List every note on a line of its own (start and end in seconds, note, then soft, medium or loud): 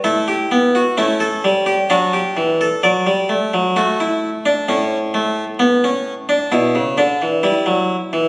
0.04 0.33 A3 medium
0.04 0.94 E4 medium
0.04 0.27 A4 medium
0.28 0.57 G4 medium
0.51 0.80 B3 medium
0.75 0.97 F#4 medium
0.98 1.26 A3 medium
0.98 1.87 C#4 medium
0.98 1.20 E4 medium
1.20 1.49 A4 medium
1.44 1.73 G3 medium
1.66 1.89 G4 medium
1.90 2.19 F#3 medium
1.90 3.71 D4 medium
1.90 2.12 F#4 medium
2.13 2.42 G4 medium
2.37 2.65 E3 medium
2.61 2.83 A4 medium
2.83 3.05 F#3 medium
2.83 3.73 D5 medium
3.06 3.29 G3 medium
3.29 3.52 A3 medium
3.54 3.75 F#3 medium
3.76 4.65 A3 medium
3.76 3.98 F#4 medium
4.00 4.28 E4 medium
4.46 4.67 D4 medium
4.68 6.48 A2 medium
4.68 4.97 C#4 medium
5.14 5.43 A3 medium
5.59 5.82 B3 medium
5.84 6.12 C#4 medium
6.29 6.51 D4 medium
6.52 6.74 B2 medium
6.52 6.80 E4 medium
6.75 6.97 C#3 medium
6.98 7.20 D3 medium
6.98 7.26 D4 medium
7.22 7.43 E3 medium
7.43 7.65 G3 medium
7.43 8.28 E4 medium
7.66 7.94 F#3 medium
8.13 8.28 E3 medium